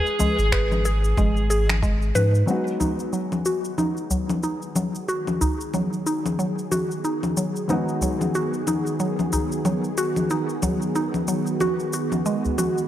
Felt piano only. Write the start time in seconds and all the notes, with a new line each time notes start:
2.46 F#3 G#3 B3 D#4
2.50 F#4
7.68 F#3 G#3 B3 D#4
7.72 F#4